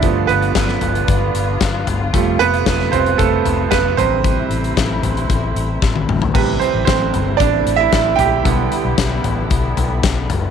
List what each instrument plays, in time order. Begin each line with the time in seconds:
Already playing: string section G3, grand piano D4 D5
0.02 fingered electric bass G1, string section D3 B3 F4, grand piano F3 A3 B3, kick, closed hi-hat
0.27 fingered electric bass G1, grand piano B3 B4, closed hi-hat
0.42 closed hi-hat
0.55 fingered electric bass G1, kick, snare, closed hi-hat
0.68 snare
0.81 fingered electric bass G1, closed hi-hat, floor tom
0.95 closed hi-hat
1.08 fingered electric bass G1, kick, closed hi-hat
1.34 fingered electric bass G1, closed hi-hat
1.61 fingered electric bass G1, kick, snare, closed hi-hat
1.87 fingered electric bass G1, closed hi-hat, floor tom
2.13 fingered electric bass F1, string section C3 A3, grand piano F3 G3 A3, kick, closed hi-hat
2.39 fingered electric bass F1, grand piano B3 B4, closed hi-hat
2.54 closed hi-hat
2.66 fingered electric bass F1, kick, snare, closed hi-hat
2.80 snare
2.92 fingered electric bass F1, grand piano C4 C5, closed hi-hat, floor tom
3.06 closed hi-hat
3.18 fingered electric bass F1, grand piano A3 A4, kick, closed hi-hat
3.45 fingered electric bass F1, closed hi-hat, floor tom
3.71 fingered electric bass F1, grand piano B3 B4, kick, snare, closed hi-hat
3.97 fingered electric bass A1, grand piano C3 G3 C4 B4 C5, string section A3 E4, closed hi-hat, floor tom
4.24 kick, closed hi-hat
4.50 fingered electric bass A1, closed hi-hat
4.64 closed hi-hat
4.77 fingered electric bass A1, kick, snare, closed hi-hat
5.03 fingered electric bass A1, closed hi-hat, floor tom
5.17 closed hi-hat
5.30 fingered electric bass A1, kick, closed hi-hat
5.56 fingered electric bass A1, closed hi-hat
5.82 fingered electric bass A1, kick, snare
5.96 high tom
6.08 fingered electric bass A1, mid tom
6.22 floor tom
6.34 fingered electric bass A1, grand piano C3 G3 B4, string section C3 G3 A3 E4, kick, crash
6.60 grand piano C4 C5, closed hi-hat
6.75 fingered electric bass A1
6.85 fingered electric bass A1, grand piano C4 C5, kick, snare, closed hi-hat
7.14 fingered electric bass G1, closed hi-hat, floor tom
7.37 fingered electric bass A1, grand piano D4 D5, kick, closed hi-hat
7.66 fingered electric bass A1, closed hi-hat
7.76 grand piano E4 E5
7.92 fingered electric bass A1, kick, snare, closed hi-hat
8.16 fingered electric bass A#1, grand piano G5, closed hi-hat, floor tom
8.20 grand piano G4
8.44 fingered electric bass B1, grand piano D3 G3 B3, string section D3 B3, kick, closed hi-hat
8.72 closed hi-hat
8.85 fingered electric bass B1
8.98 fingered electric bass B1, kick, snare, closed hi-hat
9.24 fingered electric bass A1, closed hi-hat, floor tom
9.50 fingered electric bass B1, kick, closed hi-hat
9.77 fingered electric bass B1, closed hi-hat, floor tom
10.03 fingered electric bass B1, kick, snare, closed hi-hat
10.30 fingered electric bass F#1, closed hi-hat, floor tom